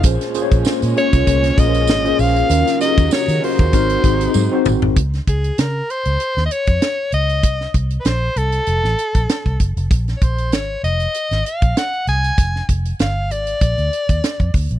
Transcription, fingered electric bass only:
X:1
M:4/4
L:1/16
Q:"Swing 16ths" 1/4=97
K:Bbm
V:1 name="Fingered electric bass" clef=bass
B,,, z2 B,,, z B,, z C,, C,,2 B,,,2 A,,,2 B,,,2 | E,, z2 E,, z E, z E,, A,,,2 A,,,2 A,, z A,,, A,,, | D,,2 D,,2 D,2 z D,, z E,, z F,, z2 D,,2 | C,,2 C,,2 B,,,2 C,,2 F,,, =A,,, z B,,, z C,, G,,, F,,, |
B,,,2 B,,,2 A,,,2 F,,,2 z A,,, z B,,, z2 C,,2 | F,,,2 F,,,2 =G,,,2 A,,,2 B,,, =D,, z E,, z F,, D,, B,,, |]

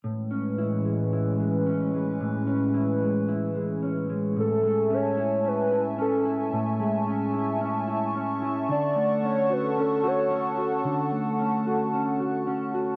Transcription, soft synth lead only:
X:1
M:4/4
L:1/16
Q:1/4=111
K:A
V:1 name="Soft synth lead"
z16 | z16 | A4 c4 B4 A3 z | z16 |
d4 c2 B2 A2 c4 z2 | z16 |]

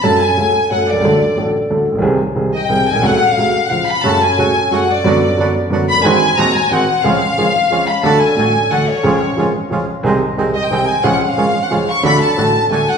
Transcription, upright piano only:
X:1
M:3/4
L:1/16
Q:1/4=180
K:F#m
V:1 name="Upright piano" clef=bass
[F,,F,A,CA]2 z2 [C,,C,F,A,CA]2 z2 [F,,F,A,CA]2 z/2 B,,,/2 ^B,,,/2 C,,/2 | [D,,D,F,A,DA]2 z2 [A,,,A,,F,A,DA]2 z2 [D,,D,F,A,DA]2 z/2 A,,,/2 ^A,,,/2 B,,,/2 | [^B,,,^B,,^D,G,^B,G]2 z2 [B,,,B,,D,G,B,G]2 z2 [B,,,B,,D,G,B,G]2 z/2 ^A,,,/2 =B,,,/2 ^B,,,/2 | [C,,C,F,A,F]2 z2 [C,,C,F,A,F]2 z2 [C,,C,^E,G,^E]2 z2 |
[F,,C,F,A,F]2 z2 [C,,C,F,A,F]2 z2 [F,,C,F,A,F]2 z2 | [F,,D,F,B,F]2 z2 [F,,D,F,B,F]2 z2 [F,,D,F,B,F]2 z/2 ^E,,,/2 F,,,/2 =G,,,/2 | [G,,,G,,^D,G,^B,F]2 z2 [^D,,,^D,,D,G,B,F]2 z2 [G,,,G,,D,G,B,F]2 z2 | [C,,C,^E,G,CG]2 z2 [G,,,G,,E,G,CG]2 z2 [C,,C,E,G,CG]2 z2 |
[D,,D,F,A,DA]2 z2 [A,,,A,,F,A,DA]2 z2 [D,,D,F,A,DA]2 z2 | [C,,C,^E,G,CG]2 z2 [G,,,G,,E,G,CG]2 z2 [C,,C,E,G,CG]2 z2 | [^B,,,^B,,^D,G,^B,G]2 z2 [B,,,B,,D,G,B,G]2 z2 [B,,,B,,D,G,B,G]2 z2 | [C,,C,^E,G,CG]2 z2 [G,,,G,,E,G,CG]2 z2 [C,,C,E,G,CG]2 z2 |
[D,,D,F,A,F]2 z2 [A,,,A,,D,F,A,F]2 z2 [D,,D,F,A,F]2 z2 |]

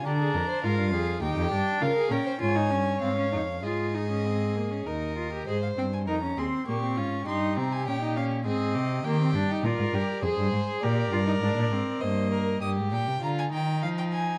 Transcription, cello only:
X:1
M:3/4
L:1/16
Q:1/4=100
K:Bbmix
V:1 name="Cello" clef=bass
D,2 F,,2 A,, G,, F,,2 E,, F,, G,,2 | [K:Ebmix] D,2 B,,2 A,,2 G,,2 A,,2 F,,2 | A,,8 E,,4 | A,,2 G,,2 F,,2 E,,2 B,,2 A,,2 |
G,,2 C,2 B,,4 A,,2 C,2 | E,2 G,,2 B,, A,, G,,2 F,, G,, A,,2 | B,,2 G,,2 A,, B,, A,,2 G,,4 | [K:Eb] G,, A,, B,, C, D,2 E,2 F,4 |]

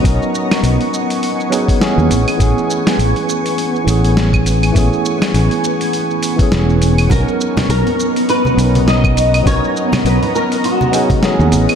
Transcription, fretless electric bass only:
X:1
M:4/4
L:1/16
Q:"Swing 16ths" 1/4=102
K:B
V:1 name="Fretless electric bass" clef=bass
B,,, z3 B,,, z8 D,, =A,,, z | =A,,, z3 A,,, z4 z A,,,6 | =A,,, z3 A,,, z6 z E,,,4 | B,,, z3 B,,, z4 z B,,,6 |
B,,, z3 B,,, z8 D,, =A,,, z |]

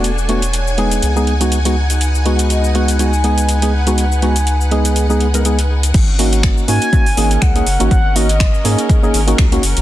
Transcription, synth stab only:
X:1
M:4/4
L:1/16
Q:"Swing 16ths" 1/4=122
K:G#m
V:1 name="Synth stab"
z2 [=A,B,=DF] z3 [G,B,^DG]3 [G,B,DG] z [G,B,DF] z [G,B,DF] z2 | z2 [G,B,DF]4 [G,B,DF]2 [G,B,DF] z [G,B,DG]3 [G,B,DG] z [G,B,DF] | z2 [G,B,DF] z3 [G,B,DG]3 [G,B,DG] z [G,B,DA] [G,B,DG] z3 | z2 [A,CDF]4 [A,CDF]2 [A,CDF] z [A,CDG]3 [A,CDG] z [A,CDF] |
z2 [A,CDF] z3 [A,CDG]3 [A,CDG] z [A,CDF] z [A,CDF] z2 |]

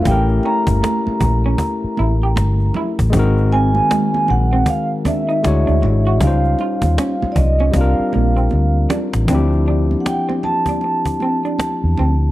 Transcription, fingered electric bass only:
X:1
M:4/4
L:1/16
Q:"Swing 16ths" 1/4=78
K:Dm
V:1 name="Fingered electric bass" clef=bass
A,,,2 z G,,, z2 B,,,2 z2 A,,,2 G,,,2 z A,,, | _A,,,4 z2 B,,,2 z4 D,, D,, ^G,,,2 | _D,,2 z _E,, z2 C,,2 C,, z B,,,2 =D,,2 z A,,, | D,,4 z8 z E,, D,,2 |]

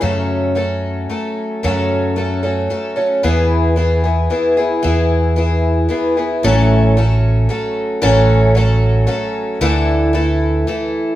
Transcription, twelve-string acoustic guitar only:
X:1
M:3/4
L:1/8
Q:1/4=113
K:A
V:1 name="Twelve-string acoustic guitar"
[F,,C,F,A,CA]2 [F,A,CA]2 [F,A,CA]2 | [F,,C,F,A,CA]2 [F,A,CA] [F,A,CA] [F,A,CA] [F,A,CA] | [E,B,EG]2 [E,B,EG] [B,EG] [E,B,EG] [B,EG] | [E,B,EG]2 [E,B,EG]2 [E,B,EG] [B,EG] |
[A,,E,F,A,CA]2 [F,A,CA]2 [F,A,CA]2 | [A,,E,F,A,CA]2 [F,A,CA]2 [F,A,CA]2 | [D,E,A,EA]2 [E,A,EA]2 [E,A,EA]2 |]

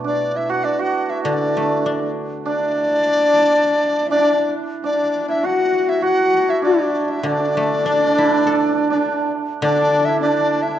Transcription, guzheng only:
X:1
M:2/4
L:1/8
Q:1/4=100
K:none
V:1 name="Guzheng"
B,,2 z2 | D, A, D2- | D2 z2 | z4 |
z4 | z4 | D, A, D E | A4 |
D,4 |]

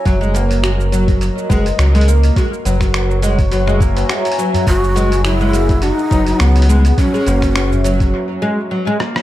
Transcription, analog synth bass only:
X:1
M:4/4
L:1/8
Q:"Swing 16ths" 1/4=104
K:F#mix
V:1 name="Analog synth bass" clef=bass
F,,,4 z F,,, C,,2 | z F,,,4- F,,, z2 | F,,,4 z F,,, C,,2 | z F,,,3 z4 |]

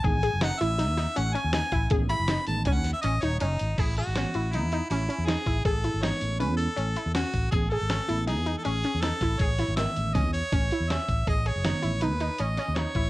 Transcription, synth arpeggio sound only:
X:1
M:5/4
L:1/8
Q:1/4=160
K:Alyd
V:1 name="Synth arpeggio sound"
G G D E D D C C D E | G E D2 C2 C D C2 | G G C E D D C C D E | G E D2 C2 C E C2 |
G G C E D D C C D E | G E D,2 C2 C E C2 | G G D E D D C C D E |]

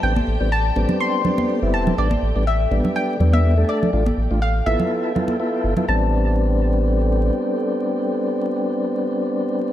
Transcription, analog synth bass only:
X:1
M:4/4
L:1/16
Q:"Swing 16ths" 1/4=123
K:Am
V:1 name="Analog synth bass" clef=bass
A,,, z A,,, A,,,3 A,,, z6 G,,, E,,, z | A,,, z A,,, A,,,3 A,,, z3 E,,4 z2 | A,,, z A,,, A,,,3 A,,, z6 z G,,, z | A,,,12 z4 |
z16 |]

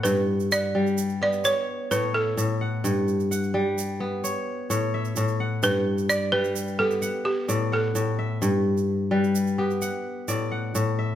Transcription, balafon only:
X:1
M:12/8
L:1/8
Q:3/8=86
K:Glyd
V:1 name="Balafon"
B2 d3 d c2 B A2 z | z12 | B2 d B2 A2 G2 A2 z | z12 |]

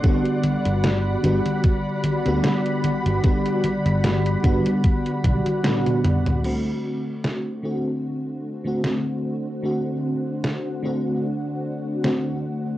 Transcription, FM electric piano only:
X:1
M:4/4
L:1/16
Q:"Swing 16ths" 1/4=75
K:Dmix
V:1 name="FM electric piano"
[D,G,B,F]6 [D,G,B,F]4- [D,G,B,F] [D,G,B,F]4- [D,G,B,F] | [D,G,B,F]6 [D,G,B,F]6 [D,G,B,F]4 | [D,A,CF]6 [D,A,CF]4- [D,A,CF] [D,A,CF]4- [D,A,CF] | [D,A,CF]6 [D,A,CF]6 [D,A,CF]4 |]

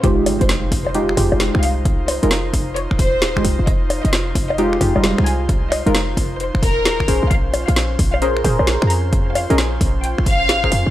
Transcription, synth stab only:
X:1
M:4/4
L:1/16
Q:"Swing 16ths" 1/4=132
K:Fm
V:1 name="Synth stab"
[A,EFG]6 z2 [A,EFG] z [A,EFG] [A,EFG]4- [A,EFG]- | [A,EFG]3 [A,EFB] z8 z [A,EFG] z2 | z8 [A,EFG] z [A,EFG] [G,A,EF]4- [G,A,EF]- | [G,A,EF]3 [A,EFB] z8 z2 [DABc] z |
z8 [DABc] z [DABc] [DABc]4- [DABc]- | [DABc]3 [DABe] z8 z [DABc] z2 |]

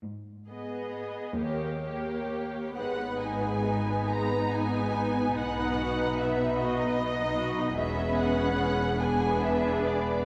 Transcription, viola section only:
X:1
M:6/8
L:1/8
Q:3/8=47
K:G#m
V:1 name="Viola section"
z B,2 A, A,2 | [B,D]6- | [B,D]6 | [B,C]3 [B,=D]3 |]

